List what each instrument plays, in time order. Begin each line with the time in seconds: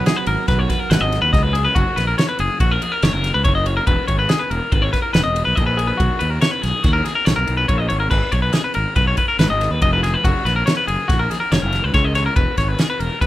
Already playing: clean electric guitar F#3 B3
0.06 clean electric guitar G#4, snare, ride
0.16 clean electric guitar B4
0.26 fingered electric bass G#1, clean electric guitar A#4, ride
0.48 fingered electric bass B1, clean electric guitar B4, kick, snare, ride
0.59 clean electric guitar C#5
0.69 clean electric guitar B4, kick, snare, ride
0.79 clean electric guitar A#4
0.90 fingered electric bass G#1, clean electric guitar B4, snare, ride
1.01 fingered electric bass G#1, clean electric guitar D#5
1.12 snare, ride
1.22 fingered electric bass D#2, clean electric guitar B4
1.33 fingered electric bass C#2, clean electric guitar D#5, kick, snare, ride
1.43 clean electric guitar B4
1.53 clean electric guitar G#4, ride
1.65 clean electric guitar B4
1.75 fingered electric bass F#1, clean electric guitar F#4, kick, ride
1.96 fingered electric bass A#1, clean electric guitar B4, snare, ride
2.07 clean electric guitar A#4
2.18 clean electric guitar C#5, snare, ride
2.29 clean electric guitar B4
2.39 fingered electric bass F#1, clean electric guitar G#4, ride
2.60 fingered electric bass A#1, clean electric guitar F#4, kick, ride
2.71 clean electric guitar A#4
2.82 clean electric guitar G#4, ride
2.92 clean electric guitar A#4
3.02 fingered electric bass F#1, clean electric guitar C#5, snare, ride
3.13 fingered electric bass F#1, clean electric guitar A#4
3.24 snare, ride
3.34 fingered electric bass C#2, clean electric guitar B4
3.44 fingered electric bass F#1, clean electric guitar C#5, kick, ride
3.55 clean electric guitar D#5
3.66 clean electric guitar C#5, ride
3.77 clean electric guitar A#4
3.87 fingered electric bass E1, clean electric guitar B4, kick, ride
4.08 fingered electric bass G#1, clean electric guitar C#5, kick, ride
4.19 clean electric guitar B4
4.29 clean electric guitar G#4, snare, ride
4.39 clean electric guitar B4
4.50 fingered electric bass E1, clean electric guitar A#4, ride
4.72 fingered electric bass G#1, clean electric guitar B4, kick, ride
4.82 clean electric guitar C#5
4.93 clean electric guitar B4, kick, snare, ride
5.02 clean electric guitar A#4
5.13 fingered electric bass E1, clean electric guitar B4, snare, ride
5.24 fingered electric bass E1, clean electric guitar D#5
5.36 ride
5.45 fingered electric bass B1, clean electric guitar B4
5.55 fingered electric bass A#1, clean electric guitar D#5, kick, ride
5.66 clean electric guitar B4
5.77 clean electric guitar G#4, ride
5.87 clean electric guitar B4
5.97 fingered electric bass B1, clean electric guitar F#4, kick, ride
6.19 fingered electric bass D#2, clean electric guitar B4, ride
6.30 clean electric guitar A#4
6.41 clean electric guitar C#5, snare, ride
6.51 clean electric guitar B4
6.62 fingered electric bass B1, clean electric guitar G#4, snare, ride
6.83 fingered electric bass D#2, clean electric guitar F#4, kick, snare, ride
6.93 clean electric guitar A#4
7.04 clean electric guitar G#4, snare, ride
7.15 clean electric guitar A#4
7.25 fingered electric bass B1, clean electric guitar C#5, snare, ride
7.36 fingered electric bass B1, clean electric guitar A#4
7.47 fingered electric bass B1, ride
7.57 clean electric guitar B4
7.68 fingered electric bass A#1, clean electric guitar C#5, kick, ride
7.78 clean electric guitar D#5
7.89 fingered electric bass G#1, clean electric guitar C#5, ride
8.00 clean electric guitar A#4
8.11 fingered electric bass G#1, clean electric guitar B4, kick, crash
8.32 fingered electric bass B1, clean electric guitar C#5, kick, ride
8.42 clean electric guitar B4
8.53 clean electric guitar G#4, snare, ride
8.64 clean electric guitar B4
8.74 fingered electric bass G#1, clean electric guitar A#4, ride
8.96 fingered electric bass B1, clean electric guitar B4, kick, ride
9.07 clean electric guitar C#5
9.17 clean electric guitar B4, kick, ride
9.28 clean electric guitar A#4
9.39 fingered electric bass G#1, clean electric guitar B4, snare, ride
9.50 fingered electric bass G#1, clean electric guitar D#5
9.61 snare, ride
9.71 fingered electric bass D#2, clean electric guitar B4
9.82 fingered electric bass F1, clean electric guitar D#5, kick, ride
9.93 clean electric guitar B4
10.03 clean electric guitar G#4, snare, ride
10.14 clean electric guitar B4
10.24 fingered electric bass F#1, clean electric guitar F#4, kick, ride
10.45 fingered electric bass A#1, clean electric guitar B4, snare, ride
10.56 clean electric guitar A#4
10.66 clean electric guitar C#5, snare, ride
10.77 clean electric guitar B4
10.88 fingered electric bass F#1, clean electric guitar G#4, ride
11.08 fingered electric bass A#1, clean electric guitar F#4, kick, snare, ride
11.19 clean electric guitar A#4
11.30 clean electric guitar G#4, snare, ride
11.40 clean electric guitar A#4
11.51 fingered electric bass F#1, clean electric guitar C#5, snare, ride
11.62 fingered electric bass F#1, clean electric guitar A#4
11.72 snare, ride
11.84 fingered electric bass C#2, clean electric guitar B4
11.94 fingered electric bass C#2, clean electric guitar C#5, kick, snare, ride
12.04 clean electric guitar D#5
12.15 clean electric guitar C#5, snare, ride
12.26 clean electric guitar A#4
12.36 fingered electric bass E1, clean electric guitar B4, kick, ride
12.57 fingered electric bass G#1, clean electric guitar C#5, kick, snare, ride
12.68 clean electric guitar B4
12.79 clean electric guitar G#4, snare, ride
12.90 clean electric guitar B4
13.00 fingered electric bass E1, clean electric guitar A#4, ride
13.21 fingered electric bass G#1, clean electric guitar B4, kick, ride